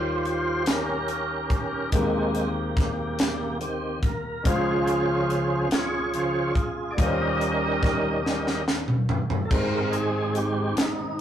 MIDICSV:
0, 0, Header, 1, 5, 480
1, 0, Start_track
1, 0, Key_signature, -4, "major"
1, 0, Tempo, 842697
1, 1098, Time_signature, 6, 3, 24, 8
1, 6385, End_track
2, 0, Start_track
2, 0, Title_t, "Tonewheel organ"
2, 0, Program_c, 0, 16
2, 0, Note_on_c, 0, 65, 58
2, 0, Note_on_c, 0, 67, 63
2, 0, Note_on_c, 0, 72, 84
2, 359, Note_off_c, 0, 65, 0
2, 364, Note_off_c, 0, 67, 0
2, 384, Note_on_c, 0, 67, 53
2, 385, Note_on_c, 0, 70, 83
2, 386, Note_on_c, 0, 61, 57
2, 404, Note_off_c, 0, 72, 0
2, 1078, Note_off_c, 0, 67, 0
2, 1079, Note_off_c, 0, 61, 0
2, 1079, Note_off_c, 0, 70, 0
2, 1093, Note_on_c, 0, 60, 49
2, 1096, Note_on_c, 0, 51, 44
2, 1099, Note_on_c, 0, 56, 40
2, 1099, Note_on_c, 0, 67, 66
2, 1103, Note_on_c, 0, 58, 45
2, 1416, Note_off_c, 0, 51, 0
2, 1418, Note_off_c, 0, 56, 0
2, 1418, Note_off_c, 0, 60, 0
2, 2036, Note_off_c, 0, 67, 0
2, 2037, Note_off_c, 0, 58, 0
2, 2056, Note_on_c, 0, 60, 53
2, 2058, Note_on_c, 0, 51, 47
2, 2058, Note_on_c, 0, 67, 42
2, 2274, Note_off_c, 0, 60, 0
2, 2275, Note_off_c, 0, 51, 0
2, 2275, Note_off_c, 0, 67, 0
2, 2311, Note_on_c, 0, 70, 65
2, 2535, Note_on_c, 0, 49, 44
2, 2535, Note_on_c, 0, 53, 41
2, 2540, Note_on_c, 0, 61, 48
2, 2546, Note_on_c, 0, 65, 56
2, 2547, Note_on_c, 0, 68, 60
2, 2552, Note_off_c, 0, 70, 0
2, 2555, Note_on_c, 0, 72, 83
2, 3234, Note_off_c, 0, 49, 0
2, 3234, Note_off_c, 0, 53, 0
2, 3236, Note_off_c, 0, 61, 0
2, 3240, Note_off_c, 0, 65, 0
2, 3240, Note_off_c, 0, 68, 0
2, 3244, Note_off_c, 0, 72, 0
2, 3255, Note_on_c, 0, 65, 59
2, 3256, Note_on_c, 0, 68, 60
2, 3270, Note_on_c, 0, 73, 76
2, 3499, Note_on_c, 0, 53, 41
2, 3501, Note_on_c, 0, 72, 47
2, 3502, Note_on_c, 0, 49, 47
2, 3716, Note_off_c, 0, 53, 0
2, 3717, Note_off_c, 0, 49, 0
2, 3717, Note_off_c, 0, 72, 0
2, 3722, Note_off_c, 0, 73, 0
2, 3934, Note_on_c, 0, 74, 71
2, 3954, Note_off_c, 0, 65, 0
2, 3955, Note_off_c, 0, 68, 0
2, 3976, Note_off_c, 0, 74, 0
2, 3976, Note_on_c, 0, 55, 44
2, 3979, Note_on_c, 0, 51, 44
2, 3981, Note_on_c, 0, 75, 82
2, 3984, Note_on_c, 0, 67, 62
2, 3985, Note_on_c, 0, 70, 61
2, 3987, Note_on_c, 0, 61, 47
2, 4675, Note_off_c, 0, 55, 0
2, 4677, Note_off_c, 0, 51, 0
2, 4681, Note_off_c, 0, 61, 0
2, 4691, Note_on_c, 0, 61, 42
2, 4696, Note_on_c, 0, 55, 37
2, 4697, Note_on_c, 0, 51, 40
2, 4913, Note_off_c, 0, 61, 0
2, 4915, Note_off_c, 0, 55, 0
2, 4916, Note_off_c, 0, 51, 0
2, 4918, Note_off_c, 0, 75, 0
2, 4920, Note_off_c, 0, 67, 0
2, 4920, Note_off_c, 0, 70, 0
2, 5385, Note_on_c, 0, 69, 70
2, 5416, Note_on_c, 0, 44, 40
2, 5422, Note_off_c, 0, 69, 0
2, 5422, Note_on_c, 0, 56, 39
2, 5426, Note_on_c, 0, 60, 45
2, 5428, Note_on_c, 0, 70, 78
2, 5648, Note_on_c, 0, 68, 76
2, 5672, Note_off_c, 0, 70, 0
2, 5894, Note_on_c, 0, 67, 79
2, 5903, Note_off_c, 0, 68, 0
2, 6117, Note_off_c, 0, 44, 0
2, 6120, Note_off_c, 0, 56, 0
2, 6122, Note_off_c, 0, 60, 0
2, 6146, Note_off_c, 0, 67, 0
2, 6151, Note_on_c, 0, 63, 72
2, 6385, Note_off_c, 0, 63, 0
2, 6385, End_track
3, 0, Start_track
3, 0, Title_t, "French horn section"
3, 0, Program_c, 1, 60
3, 5415, Note_on_c, 1, 51, 56
3, 5415, Note_on_c, 1, 63, 57
3, 5421, Note_on_c, 1, 60, 56
3, 6385, Note_off_c, 1, 51, 0
3, 6385, Note_off_c, 1, 60, 0
3, 6385, Note_off_c, 1, 63, 0
3, 6385, End_track
4, 0, Start_track
4, 0, Title_t, "Grand piano"
4, 0, Program_c, 2, 0
4, 0, Control_c, 2, 64, 127
4, 0, Note_on_c, 2, 39, 53
4, 0, Note_on_c, 2, 51, 53
4, 0, Note_on_c, 2, 55, 52
4, 0, Note_on_c, 2, 63, 49
4, 0, Note_on_c, 2, 65, 50
4, 0, Note_on_c, 2, 73, 62
4, 1075, Note_off_c, 2, 55, 0
4, 1079, Note_off_c, 2, 51, 0
4, 1079, Note_off_c, 2, 63, 0
4, 1080, Note_off_c, 2, 39, 0
4, 1081, Note_off_c, 2, 65, 0
4, 1097, Note_on_c, 2, 56, 59
4, 1101, Note_off_c, 2, 73, 0
4, 1101, Note_on_c, 2, 51, 59
4, 1101, Note_on_c, 2, 58, 44
4, 1103, Note_on_c, 2, 39, 56
4, 1107, Control_c, 2, 64, 0
4, 1107, Note_on_c, 2, 67, 54
4, 1107, Note_on_c, 2, 70, 64
4, 1136, Note_off_c, 2, 58, 0
4, 1137, Note_on_c, 2, 60, 51
4, 1220, Control_c, 2, 64, 127
4, 2514, Note_off_c, 2, 56, 0
4, 2517, Note_off_c, 2, 51, 0
4, 2518, Note_off_c, 2, 39, 0
4, 2519, Note_off_c, 2, 67, 0
4, 2520, Note_off_c, 2, 70, 0
4, 2523, Note_on_c, 2, 56, 57
4, 2529, Note_on_c, 2, 49, 59
4, 2530, Note_on_c, 2, 37, 56
4, 2530, Note_on_c, 2, 61, 53
4, 2532, Note_on_c, 2, 65, 56
4, 2535, Note_off_c, 2, 60, 0
4, 2537, Note_on_c, 2, 72, 62
4, 2546, Control_c, 2, 64, 0
4, 2632, Control_c, 2, 64, 127
4, 3948, Note_off_c, 2, 56, 0
4, 3952, Note_off_c, 2, 37, 0
4, 3952, Note_off_c, 2, 49, 0
4, 3952, Note_off_c, 2, 61, 0
4, 3953, Note_off_c, 2, 65, 0
4, 3956, Note_off_c, 2, 72, 0
4, 3968, Note_on_c, 2, 55, 62
4, 3973, Note_on_c, 2, 61, 54
4, 3976, Note_on_c, 2, 51, 55
4, 3977, Note_on_c, 2, 39, 55
4, 3980, Note_on_c, 2, 65, 52
4, 3980, Note_on_c, 2, 71, 47
4, 3986, Control_c, 2, 64, 0
4, 4016, Note_off_c, 2, 71, 0
4, 4021, Note_on_c, 2, 72, 64
4, 4094, Control_c, 2, 64, 127
4, 5393, Note_off_c, 2, 55, 0
4, 5395, Note_off_c, 2, 61, 0
4, 5396, Note_off_c, 2, 51, 0
4, 5397, Note_off_c, 2, 39, 0
4, 5398, Note_off_c, 2, 65, 0
4, 5408, Note_on_c, 2, 56, 54
4, 5414, Note_off_c, 2, 72, 0
4, 5414, Note_on_c, 2, 63, 48
4, 5418, Note_on_c, 2, 32, 51
4, 5418, Note_on_c, 2, 44, 53
4, 5421, Note_on_c, 2, 67, 53
4, 5423, Note_on_c, 2, 72, 61
4, 5427, Control_c, 2, 64, 0
4, 5530, Control_c, 2, 64, 127
4, 6385, Note_off_c, 2, 32, 0
4, 6385, Note_off_c, 2, 44, 0
4, 6385, Note_off_c, 2, 56, 0
4, 6385, Note_off_c, 2, 63, 0
4, 6385, Note_off_c, 2, 67, 0
4, 6385, Note_off_c, 2, 72, 0
4, 6385, End_track
5, 0, Start_track
5, 0, Title_t, "Drums"
5, 144, Note_on_c, 9, 42, 37
5, 201, Note_off_c, 9, 42, 0
5, 377, Note_on_c, 9, 42, 85
5, 384, Note_on_c, 9, 38, 87
5, 434, Note_off_c, 9, 42, 0
5, 441, Note_off_c, 9, 38, 0
5, 616, Note_on_c, 9, 42, 43
5, 673, Note_off_c, 9, 42, 0
5, 855, Note_on_c, 9, 36, 74
5, 860, Note_on_c, 9, 42, 41
5, 912, Note_off_c, 9, 36, 0
5, 916, Note_off_c, 9, 42, 0
5, 1095, Note_on_c, 9, 42, 90
5, 1096, Note_on_c, 9, 36, 91
5, 1152, Note_off_c, 9, 42, 0
5, 1153, Note_off_c, 9, 36, 0
5, 1337, Note_on_c, 9, 42, 48
5, 1394, Note_off_c, 9, 42, 0
5, 1576, Note_on_c, 9, 36, 88
5, 1578, Note_on_c, 9, 42, 43
5, 1585, Note_on_c, 9, 38, 28
5, 1633, Note_off_c, 9, 36, 0
5, 1635, Note_off_c, 9, 42, 0
5, 1642, Note_off_c, 9, 38, 0
5, 1815, Note_on_c, 9, 42, 81
5, 1822, Note_on_c, 9, 38, 90
5, 1872, Note_off_c, 9, 42, 0
5, 1879, Note_off_c, 9, 38, 0
5, 2055, Note_on_c, 9, 42, 42
5, 2112, Note_off_c, 9, 42, 0
5, 2293, Note_on_c, 9, 36, 69
5, 2295, Note_on_c, 9, 42, 41
5, 2350, Note_off_c, 9, 36, 0
5, 2352, Note_off_c, 9, 42, 0
5, 2536, Note_on_c, 9, 36, 91
5, 2536, Note_on_c, 9, 42, 89
5, 2593, Note_off_c, 9, 36, 0
5, 2593, Note_off_c, 9, 42, 0
5, 2777, Note_on_c, 9, 42, 47
5, 2834, Note_off_c, 9, 42, 0
5, 3020, Note_on_c, 9, 42, 42
5, 3077, Note_off_c, 9, 42, 0
5, 3253, Note_on_c, 9, 42, 81
5, 3260, Note_on_c, 9, 38, 89
5, 3310, Note_off_c, 9, 42, 0
5, 3317, Note_off_c, 9, 38, 0
5, 3495, Note_on_c, 9, 42, 45
5, 3552, Note_off_c, 9, 42, 0
5, 3733, Note_on_c, 9, 36, 71
5, 3739, Note_on_c, 9, 42, 41
5, 3790, Note_off_c, 9, 36, 0
5, 3796, Note_off_c, 9, 42, 0
5, 3977, Note_on_c, 9, 36, 96
5, 3978, Note_on_c, 9, 42, 88
5, 4034, Note_off_c, 9, 36, 0
5, 4035, Note_off_c, 9, 42, 0
5, 4222, Note_on_c, 9, 42, 45
5, 4279, Note_off_c, 9, 42, 0
5, 4458, Note_on_c, 9, 36, 83
5, 4461, Note_on_c, 9, 42, 41
5, 4468, Note_on_c, 9, 38, 29
5, 4515, Note_off_c, 9, 36, 0
5, 4518, Note_off_c, 9, 42, 0
5, 4525, Note_off_c, 9, 38, 0
5, 4707, Note_on_c, 9, 38, 46
5, 4764, Note_off_c, 9, 38, 0
5, 4825, Note_on_c, 9, 38, 44
5, 4882, Note_off_c, 9, 38, 0
5, 4943, Note_on_c, 9, 38, 68
5, 5000, Note_off_c, 9, 38, 0
5, 5058, Note_on_c, 9, 45, 62
5, 5115, Note_off_c, 9, 45, 0
5, 5178, Note_on_c, 9, 43, 78
5, 5235, Note_off_c, 9, 43, 0
5, 5298, Note_on_c, 9, 43, 76
5, 5355, Note_off_c, 9, 43, 0
5, 5416, Note_on_c, 9, 36, 90
5, 5418, Note_on_c, 9, 49, 76
5, 5473, Note_off_c, 9, 36, 0
5, 5475, Note_off_c, 9, 49, 0
5, 5656, Note_on_c, 9, 42, 43
5, 5713, Note_off_c, 9, 42, 0
5, 5896, Note_on_c, 9, 42, 44
5, 5953, Note_off_c, 9, 42, 0
5, 6134, Note_on_c, 9, 42, 79
5, 6141, Note_on_c, 9, 38, 88
5, 6191, Note_off_c, 9, 42, 0
5, 6198, Note_off_c, 9, 38, 0
5, 6385, End_track
0, 0, End_of_file